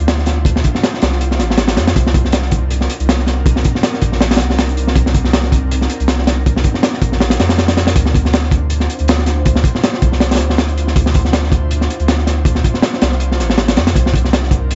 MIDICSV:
0, 0, Header, 1, 3, 480
1, 0, Start_track
1, 0, Tempo, 375000
1, 586, Time_signature, 4, 2, 24, 8
1, 18880, End_track
2, 0, Start_track
2, 0, Title_t, "Sub bass"
2, 0, Program_c, 0, 38
2, 0, Note_on_c, 0, 38, 101
2, 809, Note_off_c, 0, 38, 0
2, 1307, Note_on_c, 0, 36, 92
2, 1785, Note_on_c, 0, 33, 85
2, 1805, Note_off_c, 0, 36, 0
2, 2267, Note_on_c, 0, 41, 102
2, 2286, Note_off_c, 0, 33, 0
2, 2484, Note_off_c, 0, 41, 0
2, 2509, Note_on_c, 0, 36, 101
2, 3690, Note_off_c, 0, 36, 0
2, 3839, Note_on_c, 0, 36, 97
2, 4650, Note_off_c, 0, 36, 0
2, 5147, Note_on_c, 0, 34, 91
2, 5630, Note_on_c, 0, 36, 95
2, 5649, Note_off_c, 0, 34, 0
2, 6330, Note_off_c, 0, 36, 0
2, 6342, Note_on_c, 0, 36, 98
2, 7526, Note_off_c, 0, 36, 0
2, 7680, Note_on_c, 0, 36, 101
2, 8490, Note_off_c, 0, 36, 0
2, 8981, Note_on_c, 0, 34, 93
2, 9446, Note_off_c, 0, 34, 0
2, 9467, Note_on_c, 0, 41, 88
2, 10169, Note_off_c, 0, 41, 0
2, 10185, Note_on_c, 0, 38, 100
2, 11368, Note_off_c, 0, 38, 0
2, 11520, Note_on_c, 0, 38, 100
2, 12330, Note_off_c, 0, 38, 0
2, 12827, Note_on_c, 0, 36, 90
2, 13309, Note_on_c, 0, 38, 95
2, 13328, Note_off_c, 0, 36, 0
2, 14010, Note_off_c, 0, 38, 0
2, 14028, Note_on_c, 0, 38, 100
2, 15209, Note_off_c, 0, 38, 0
2, 15358, Note_on_c, 0, 38, 98
2, 16169, Note_off_c, 0, 38, 0
2, 16666, Note_on_c, 0, 36, 92
2, 17146, Note_on_c, 0, 33, 89
2, 17165, Note_off_c, 0, 36, 0
2, 17625, Note_on_c, 0, 41, 103
2, 17645, Note_off_c, 0, 33, 0
2, 17844, Note_off_c, 0, 41, 0
2, 17864, Note_on_c, 0, 36, 98
2, 18880, Note_off_c, 0, 36, 0
2, 18880, End_track
3, 0, Start_track
3, 0, Title_t, "Drums"
3, 102, Note_on_c, 9, 42, 90
3, 103, Note_on_c, 9, 38, 114
3, 230, Note_off_c, 9, 42, 0
3, 231, Note_off_c, 9, 38, 0
3, 234, Note_on_c, 9, 38, 37
3, 333, Note_on_c, 9, 42, 68
3, 341, Note_off_c, 9, 38, 0
3, 341, Note_on_c, 9, 38, 53
3, 461, Note_off_c, 9, 42, 0
3, 469, Note_off_c, 9, 38, 0
3, 576, Note_on_c, 9, 36, 112
3, 586, Note_on_c, 9, 42, 89
3, 704, Note_off_c, 9, 36, 0
3, 714, Note_off_c, 9, 42, 0
3, 714, Note_on_c, 9, 38, 57
3, 818, Note_on_c, 9, 42, 77
3, 828, Note_on_c, 9, 36, 95
3, 842, Note_off_c, 9, 38, 0
3, 946, Note_off_c, 9, 42, 0
3, 956, Note_off_c, 9, 36, 0
3, 956, Note_on_c, 9, 38, 48
3, 1068, Note_off_c, 9, 38, 0
3, 1068, Note_on_c, 9, 38, 121
3, 1070, Note_on_c, 9, 42, 86
3, 1196, Note_off_c, 9, 38, 0
3, 1198, Note_off_c, 9, 42, 0
3, 1200, Note_on_c, 9, 38, 49
3, 1301, Note_on_c, 9, 42, 70
3, 1312, Note_off_c, 9, 38, 0
3, 1312, Note_on_c, 9, 38, 110
3, 1429, Note_off_c, 9, 42, 0
3, 1434, Note_off_c, 9, 38, 0
3, 1434, Note_on_c, 9, 38, 43
3, 1546, Note_on_c, 9, 42, 82
3, 1562, Note_off_c, 9, 38, 0
3, 1674, Note_off_c, 9, 42, 0
3, 1678, Note_on_c, 9, 38, 42
3, 1782, Note_off_c, 9, 38, 0
3, 1782, Note_on_c, 9, 38, 37
3, 1789, Note_on_c, 9, 42, 66
3, 1910, Note_off_c, 9, 38, 0
3, 1917, Note_off_c, 9, 42, 0
3, 1926, Note_on_c, 9, 38, 49
3, 2015, Note_on_c, 9, 42, 81
3, 2018, Note_off_c, 9, 38, 0
3, 2018, Note_on_c, 9, 38, 94
3, 2143, Note_off_c, 9, 42, 0
3, 2146, Note_off_c, 9, 38, 0
3, 2146, Note_on_c, 9, 38, 116
3, 2153, Note_on_c, 9, 42, 86
3, 2262, Note_off_c, 9, 38, 0
3, 2262, Note_on_c, 9, 38, 106
3, 2267, Note_off_c, 9, 42, 0
3, 2267, Note_on_c, 9, 42, 82
3, 2390, Note_off_c, 9, 38, 0
3, 2395, Note_off_c, 9, 42, 0
3, 2399, Note_on_c, 9, 38, 109
3, 2400, Note_on_c, 9, 42, 71
3, 2509, Note_on_c, 9, 36, 109
3, 2511, Note_off_c, 9, 42, 0
3, 2511, Note_on_c, 9, 42, 99
3, 2527, Note_off_c, 9, 38, 0
3, 2637, Note_off_c, 9, 36, 0
3, 2639, Note_off_c, 9, 42, 0
3, 2643, Note_on_c, 9, 38, 62
3, 2743, Note_on_c, 9, 36, 103
3, 2743, Note_on_c, 9, 42, 75
3, 2771, Note_off_c, 9, 38, 0
3, 2871, Note_off_c, 9, 36, 0
3, 2871, Note_off_c, 9, 42, 0
3, 2876, Note_on_c, 9, 38, 43
3, 2974, Note_on_c, 9, 42, 92
3, 2983, Note_off_c, 9, 38, 0
3, 2983, Note_on_c, 9, 38, 127
3, 3100, Note_off_c, 9, 38, 0
3, 3100, Note_on_c, 9, 38, 47
3, 3102, Note_off_c, 9, 42, 0
3, 3217, Note_on_c, 9, 42, 68
3, 3225, Note_on_c, 9, 36, 102
3, 3228, Note_off_c, 9, 38, 0
3, 3345, Note_off_c, 9, 42, 0
3, 3353, Note_off_c, 9, 36, 0
3, 3462, Note_on_c, 9, 42, 86
3, 3590, Note_off_c, 9, 42, 0
3, 3594, Note_on_c, 9, 38, 42
3, 3706, Note_on_c, 9, 42, 76
3, 3722, Note_off_c, 9, 38, 0
3, 3834, Note_off_c, 9, 42, 0
3, 3840, Note_on_c, 9, 42, 43
3, 3953, Note_on_c, 9, 38, 117
3, 3956, Note_off_c, 9, 42, 0
3, 3956, Note_on_c, 9, 42, 88
3, 4081, Note_off_c, 9, 38, 0
3, 4083, Note_on_c, 9, 38, 40
3, 4084, Note_off_c, 9, 42, 0
3, 4181, Note_off_c, 9, 38, 0
3, 4181, Note_on_c, 9, 38, 50
3, 4196, Note_on_c, 9, 42, 71
3, 4309, Note_off_c, 9, 38, 0
3, 4324, Note_off_c, 9, 42, 0
3, 4426, Note_on_c, 9, 36, 112
3, 4431, Note_on_c, 9, 42, 92
3, 4554, Note_off_c, 9, 36, 0
3, 4557, Note_on_c, 9, 38, 53
3, 4559, Note_off_c, 9, 42, 0
3, 4664, Note_on_c, 9, 42, 68
3, 4675, Note_on_c, 9, 36, 105
3, 4685, Note_off_c, 9, 38, 0
3, 4792, Note_off_c, 9, 42, 0
3, 4803, Note_off_c, 9, 36, 0
3, 4804, Note_on_c, 9, 38, 43
3, 4905, Note_off_c, 9, 38, 0
3, 4905, Note_on_c, 9, 38, 120
3, 4907, Note_on_c, 9, 42, 91
3, 5033, Note_off_c, 9, 38, 0
3, 5035, Note_off_c, 9, 42, 0
3, 5039, Note_on_c, 9, 38, 46
3, 5138, Note_on_c, 9, 42, 76
3, 5146, Note_on_c, 9, 36, 97
3, 5167, Note_off_c, 9, 38, 0
3, 5266, Note_off_c, 9, 42, 0
3, 5274, Note_off_c, 9, 36, 0
3, 5276, Note_on_c, 9, 38, 46
3, 5383, Note_off_c, 9, 38, 0
3, 5383, Note_on_c, 9, 38, 105
3, 5394, Note_on_c, 9, 42, 81
3, 5511, Note_off_c, 9, 38, 0
3, 5513, Note_on_c, 9, 38, 88
3, 5518, Note_off_c, 9, 42, 0
3, 5518, Note_on_c, 9, 42, 76
3, 5573, Note_off_c, 9, 42, 0
3, 5573, Note_on_c, 9, 42, 63
3, 5586, Note_off_c, 9, 38, 0
3, 5586, Note_on_c, 9, 38, 92
3, 5627, Note_off_c, 9, 38, 0
3, 5627, Note_on_c, 9, 38, 37
3, 5628, Note_off_c, 9, 42, 0
3, 5628, Note_on_c, 9, 42, 72
3, 5755, Note_off_c, 9, 38, 0
3, 5756, Note_off_c, 9, 42, 0
3, 5759, Note_on_c, 9, 38, 56
3, 5866, Note_on_c, 9, 42, 86
3, 5870, Note_off_c, 9, 38, 0
3, 5870, Note_on_c, 9, 38, 115
3, 5994, Note_off_c, 9, 42, 0
3, 5998, Note_off_c, 9, 38, 0
3, 6003, Note_on_c, 9, 42, 41
3, 6106, Note_off_c, 9, 42, 0
3, 6106, Note_on_c, 9, 42, 67
3, 6234, Note_off_c, 9, 42, 0
3, 6239, Note_on_c, 9, 38, 43
3, 6343, Note_on_c, 9, 36, 121
3, 6343, Note_on_c, 9, 42, 89
3, 6367, Note_off_c, 9, 38, 0
3, 6471, Note_off_c, 9, 36, 0
3, 6471, Note_off_c, 9, 42, 0
3, 6479, Note_on_c, 9, 38, 54
3, 6584, Note_on_c, 9, 42, 69
3, 6586, Note_on_c, 9, 36, 96
3, 6607, Note_off_c, 9, 38, 0
3, 6712, Note_off_c, 9, 42, 0
3, 6714, Note_off_c, 9, 36, 0
3, 6715, Note_on_c, 9, 38, 46
3, 6827, Note_off_c, 9, 38, 0
3, 6827, Note_on_c, 9, 38, 125
3, 6828, Note_on_c, 9, 42, 92
3, 6953, Note_off_c, 9, 38, 0
3, 6953, Note_on_c, 9, 38, 45
3, 6956, Note_off_c, 9, 42, 0
3, 7067, Note_on_c, 9, 36, 90
3, 7070, Note_on_c, 9, 42, 70
3, 7081, Note_off_c, 9, 38, 0
3, 7195, Note_off_c, 9, 36, 0
3, 7198, Note_off_c, 9, 42, 0
3, 7313, Note_on_c, 9, 42, 96
3, 7441, Note_off_c, 9, 42, 0
3, 7442, Note_on_c, 9, 38, 39
3, 7546, Note_on_c, 9, 42, 75
3, 7570, Note_off_c, 9, 38, 0
3, 7674, Note_off_c, 9, 42, 0
3, 7681, Note_on_c, 9, 42, 43
3, 7782, Note_on_c, 9, 38, 121
3, 7787, Note_off_c, 9, 42, 0
3, 7787, Note_on_c, 9, 42, 83
3, 7910, Note_off_c, 9, 38, 0
3, 7915, Note_off_c, 9, 42, 0
3, 7916, Note_on_c, 9, 38, 40
3, 8027, Note_off_c, 9, 38, 0
3, 8027, Note_on_c, 9, 38, 101
3, 8028, Note_on_c, 9, 42, 81
3, 8155, Note_off_c, 9, 38, 0
3, 8156, Note_off_c, 9, 42, 0
3, 8272, Note_on_c, 9, 36, 117
3, 8272, Note_on_c, 9, 42, 82
3, 8400, Note_off_c, 9, 36, 0
3, 8400, Note_off_c, 9, 42, 0
3, 8402, Note_on_c, 9, 38, 63
3, 8497, Note_on_c, 9, 42, 69
3, 8505, Note_on_c, 9, 36, 92
3, 8530, Note_off_c, 9, 38, 0
3, 8625, Note_off_c, 9, 42, 0
3, 8631, Note_on_c, 9, 38, 45
3, 8633, Note_off_c, 9, 36, 0
3, 8742, Note_off_c, 9, 38, 0
3, 8742, Note_on_c, 9, 38, 125
3, 8743, Note_on_c, 9, 42, 87
3, 8870, Note_off_c, 9, 38, 0
3, 8871, Note_off_c, 9, 42, 0
3, 8877, Note_on_c, 9, 38, 44
3, 8981, Note_on_c, 9, 36, 99
3, 8983, Note_on_c, 9, 42, 65
3, 9005, Note_off_c, 9, 38, 0
3, 9109, Note_off_c, 9, 36, 0
3, 9111, Note_off_c, 9, 42, 0
3, 9116, Note_on_c, 9, 38, 45
3, 9222, Note_off_c, 9, 38, 0
3, 9222, Note_on_c, 9, 38, 111
3, 9233, Note_on_c, 9, 42, 72
3, 9346, Note_off_c, 9, 38, 0
3, 9346, Note_on_c, 9, 38, 101
3, 9356, Note_off_c, 9, 42, 0
3, 9356, Note_on_c, 9, 42, 89
3, 9466, Note_off_c, 9, 42, 0
3, 9466, Note_on_c, 9, 42, 87
3, 9469, Note_off_c, 9, 38, 0
3, 9469, Note_on_c, 9, 38, 109
3, 9590, Note_off_c, 9, 38, 0
3, 9590, Note_on_c, 9, 38, 100
3, 9594, Note_off_c, 9, 42, 0
3, 9599, Note_on_c, 9, 42, 80
3, 9705, Note_off_c, 9, 38, 0
3, 9705, Note_on_c, 9, 38, 104
3, 9710, Note_off_c, 9, 42, 0
3, 9710, Note_on_c, 9, 42, 77
3, 9832, Note_off_c, 9, 38, 0
3, 9832, Note_on_c, 9, 38, 108
3, 9834, Note_off_c, 9, 42, 0
3, 9834, Note_on_c, 9, 42, 84
3, 9943, Note_off_c, 9, 38, 0
3, 9943, Note_on_c, 9, 38, 106
3, 9950, Note_off_c, 9, 42, 0
3, 9950, Note_on_c, 9, 42, 75
3, 10071, Note_off_c, 9, 38, 0
3, 10071, Note_on_c, 9, 38, 104
3, 10078, Note_off_c, 9, 42, 0
3, 10079, Note_on_c, 9, 42, 85
3, 10183, Note_off_c, 9, 42, 0
3, 10183, Note_on_c, 9, 42, 94
3, 10185, Note_on_c, 9, 36, 123
3, 10199, Note_off_c, 9, 38, 0
3, 10311, Note_off_c, 9, 42, 0
3, 10311, Note_on_c, 9, 38, 61
3, 10313, Note_off_c, 9, 36, 0
3, 10426, Note_on_c, 9, 36, 99
3, 10434, Note_on_c, 9, 42, 71
3, 10439, Note_off_c, 9, 38, 0
3, 10554, Note_off_c, 9, 36, 0
3, 10562, Note_off_c, 9, 42, 0
3, 10562, Note_on_c, 9, 38, 48
3, 10665, Note_on_c, 9, 42, 88
3, 10671, Note_off_c, 9, 38, 0
3, 10671, Note_on_c, 9, 38, 124
3, 10793, Note_off_c, 9, 42, 0
3, 10794, Note_off_c, 9, 38, 0
3, 10794, Note_on_c, 9, 38, 45
3, 10898, Note_on_c, 9, 36, 99
3, 10903, Note_on_c, 9, 42, 65
3, 10922, Note_off_c, 9, 38, 0
3, 11026, Note_off_c, 9, 36, 0
3, 11031, Note_off_c, 9, 42, 0
3, 11134, Note_on_c, 9, 42, 93
3, 11262, Note_off_c, 9, 42, 0
3, 11267, Note_on_c, 9, 38, 41
3, 11388, Note_on_c, 9, 42, 67
3, 11395, Note_off_c, 9, 38, 0
3, 11505, Note_off_c, 9, 42, 0
3, 11505, Note_on_c, 9, 42, 42
3, 11621, Note_off_c, 9, 42, 0
3, 11621, Note_on_c, 9, 42, 84
3, 11637, Note_on_c, 9, 38, 121
3, 11749, Note_off_c, 9, 42, 0
3, 11755, Note_off_c, 9, 38, 0
3, 11755, Note_on_c, 9, 38, 41
3, 11855, Note_on_c, 9, 42, 67
3, 11862, Note_off_c, 9, 38, 0
3, 11862, Note_on_c, 9, 38, 47
3, 11983, Note_off_c, 9, 42, 0
3, 11990, Note_off_c, 9, 38, 0
3, 12102, Note_on_c, 9, 42, 91
3, 12107, Note_on_c, 9, 36, 109
3, 12230, Note_off_c, 9, 42, 0
3, 12230, Note_on_c, 9, 38, 60
3, 12235, Note_off_c, 9, 36, 0
3, 12338, Note_on_c, 9, 36, 100
3, 12348, Note_on_c, 9, 42, 74
3, 12358, Note_off_c, 9, 38, 0
3, 12466, Note_off_c, 9, 36, 0
3, 12476, Note_off_c, 9, 42, 0
3, 12478, Note_on_c, 9, 38, 44
3, 12587, Note_on_c, 9, 42, 95
3, 12590, Note_off_c, 9, 38, 0
3, 12590, Note_on_c, 9, 38, 119
3, 12715, Note_off_c, 9, 38, 0
3, 12715, Note_off_c, 9, 42, 0
3, 12715, Note_on_c, 9, 38, 48
3, 12823, Note_on_c, 9, 42, 70
3, 12826, Note_on_c, 9, 36, 99
3, 12843, Note_off_c, 9, 38, 0
3, 12951, Note_off_c, 9, 42, 0
3, 12954, Note_off_c, 9, 36, 0
3, 12956, Note_on_c, 9, 38, 42
3, 13060, Note_off_c, 9, 38, 0
3, 13060, Note_on_c, 9, 38, 104
3, 13068, Note_on_c, 9, 42, 80
3, 13188, Note_off_c, 9, 38, 0
3, 13196, Note_off_c, 9, 42, 0
3, 13199, Note_on_c, 9, 38, 91
3, 13201, Note_on_c, 9, 42, 64
3, 13250, Note_off_c, 9, 38, 0
3, 13250, Note_on_c, 9, 38, 86
3, 13259, Note_off_c, 9, 42, 0
3, 13259, Note_on_c, 9, 42, 67
3, 13306, Note_off_c, 9, 42, 0
3, 13306, Note_on_c, 9, 42, 65
3, 13308, Note_off_c, 9, 38, 0
3, 13308, Note_on_c, 9, 38, 39
3, 13434, Note_off_c, 9, 42, 0
3, 13436, Note_off_c, 9, 38, 0
3, 13437, Note_on_c, 9, 38, 49
3, 13546, Note_off_c, 9, 38, 0
3, 13546, Note_on_c, 9, 38, 127
3, 13550, Note_on_c, 9, 42, 88
3, 13674, Note_off_c, 9, 38, 0
3, 13678, Note_off_c, 9, 42, 0
3, 13678, Note_on_c, 9, 42, 42
3, 13793, Note_off_c, 9, 42, 0
3, 13793, Note_on_c, 9, 42, 71
3, 13918, Note_on_c, 9, 38, 39
3, 13921, Note_off_c, 9, 42, 0
3, 14027, Note_on_c, 9, 42, 97
3, 14028, Note_on_c, 9, 36, 115
3, 14046, Note_off_c, 9, 38, 0
3, 14155, Note_off_c, 9, 42, 0
3, 14156, Note_off_c, 9, 36, 0
3, 14157, Note_on_c, 9, 38, 61
3, 14261, Note_on_c, 9, 42, 73
3, 14271, Note_on_c, 9, 36, 105
3, 14285, Note_off_c, 9, 38, 0
3, 14389, Note_off_c, 9, 42, 0
3, 14397, Note_on_c, 9, 38, 45
3, 14399, Note_off_c, 9, 36, 0
3, 14504, Note_off_c, 9, 38, 0
3, 14504, Note_on_c, 9, 38, 125
3, 14505, Note_on_c, 9, 42, 90
3, 14632, Note_off_c, 9, 38, 0
3, 14633, Note_off_c, 9, 42, 0
3, 14637, Note_on_c, 9, 38, 45
3, 14741, Note_on_c, 9, 36, 94
3, 14747, Note_on_c, 9, 42, 71
3, 14765, Note_off_c, 9, 38, 0
3, 14869, Note_off_c, 9, 36, 0
3, 14875, Note_off_c, 9, 42, 0
3, 14985, Note_on_c, 9, 42, 85
3, 15113, Note_off_c, 9, 42, 0
3, 15118, Note_on_c, 9, 38, 42
3, 15234, Note_on_c, 9, 42, 72
3, 15246, Note_off_c, 9, 38, 0
3, 15355, Note_off_c, 9, 42, 0
3, 15355, Note_on_c, 9, 42, 41
3, 15464, Note_off_c, 9, 42, 0
3, 15464, Note_on_c, 9, 42, 88
3, 15467, Note_on_c, 9, 38, 120
3, 15592, Note_off_c, 9, 42, 0
3, 15595, Note_off_c, 9, 38, 0
3, 15595, Note_on_c, 9, 38, 35
3, 15703, Note_off_c, 9, 38, 0
3, 15703, Note_on_c, 9, 38, 48
3, 15709, Note_on_c, 9, 42, 68
3, 15831, Note_off_c, 9, 38, 0
3, 15837, Note_off_c, 9, 42, 0
3, 15938, Note_on_c, 9, 36, 114
3, 15946, Note_on_c, 9, 42, 97
3, 16066, Note_off_c, 9, 36, 0
3, 16066, Note_on_c, 9, 38, 51
3, 16074, Note_off_c, 9, 42, 0
3, 16184, Note_on_c, 9, 36, 98
3, 16184, Note_on_c, 9, 42, 76
3, 16194, Note_off_c, 9, 38, 0
3, 16308, Note_on_c, 9, 38, 43
3, 16312, Note_off_c, 9, 36, 0
3, 16312, Note_off_c, 9, 42, 0
3, 16415, Note_off_c, 9, 38, 0
3, 16415, Note_on_c, 9, 38, 126
3, 16424, Note_on_c, 9, 42, 84
3, 16543, Note_off_c, 9, 38, 0
3, 16552, Note_off_c, 9, 42, 0
3, 16555, Note_on_c, 9, 38, 48
3, 16658, Note_on_c, 9, 42, 87
3, 16665, Note_off_c, 9, 38, 0
3, 16665, Note_on_c, 9, 38, 112
3, 16786, Note_off_c, 9, 42, 0
3, 16793, Note_off_c, 9, 38, 0
3, 16794, Note_on_c, 9, 38, 40
3, 16895, Note_on_c, 9, 42, 92
3, 16922, Note_off_c, 9, 38, 0
3, 17023, Note_off_c, 9, 42, 0
3, 17043, Note_on_c, 9, 38, 40
3, 17148, Note_off_c, 9, 38, 0
3, 17148, Note_on_c, 9, 38, 36
3, 17153, Note_on_c, 9, 42, 68
3, 17275, Note_off_c, 9, 38, 0
3, 17275, Note_on_c, 9, 38, 59
3, 17281, Note_off_c, 9, 42, 0
3, 17378, Note_off_c, 9, 38, 0
3, 17378, Note_on_c, 9, 38, 103
3, 17379, Note_on_c, 9, 42, 75
3, 17506, Note_off_c, 9, 38, 0
3, 17507, Note_off_c, 9, 42, 0
3, 17512, Note_on_c, 9, 42, 87
3, 17514, Note_on_c, 9, 38, 102
3, 17620, Note_off_c, 9, 42, 0
3, 17620, Note_on_c, 9, 42, 80
3, 17627, Note_off_c, 9, 38, 0
3, 17627, Note_on_c, 9, 38, 108
3, 17748, Note_off_c, 9, 42, 0
3, 17751, Note_off_c, 9, 38, 0
3, 17751, Note_on_c, 9, 38, 106
3, 17754, Note_on_c, 9, 42, 84
3, 17863, Note_on_c, 9, 36, 111
3, 17870, Note_off_c, 9, 42, 0
3, 17870, Note_on_c, 9, 42, 93
3, 17879, Note_off_c, 9, 38, 0
3, 17991, Note_off_c, 9, 36, 0
3, 17998, Note_off_c, 9, 42, 0
3, 17998, Note_on_c, 9, 38, 63
3, 18094, Note_on_c, 9, 36, 98
3, 18117, Note_on_c, 9, 42, 76
3, 18126, Note_off_c, 9, 38, 0
3, 18222, Note_off_c, 9, 36, 0
3, 18235, Note_on_c, 9, 38, 44
3, 18245, Note_off_c, 9, 42, 0
3, 18345, Note_off_c, 9, 38, 0
3, 18345, Note_on_c, 9, 38, 122
3, 18347, Note_on_c, 9, 42, 93
3, 18471, Note_off_c, 9, 38, 0
3, 18471, Note_on_c, 9, 38, 44
3, 18475, Note_off_c, 9, 42, 0
3, 18574, Note_on_c, 9, 36, 88
3, 18575, Note_on_c, 9, 42, 68
3, 18599, Note_off_c, 9, 38, 0
3, 18702, Note_off_c, 9, 36, 0
3, 18703, Note_off_c, 9, 42, 0
3, 18823, Note_on_c, 9, 42, 85
3, 18880, Note_off_c, 9, 42, 0
3, 18880, End_track
0, 0, End_of_file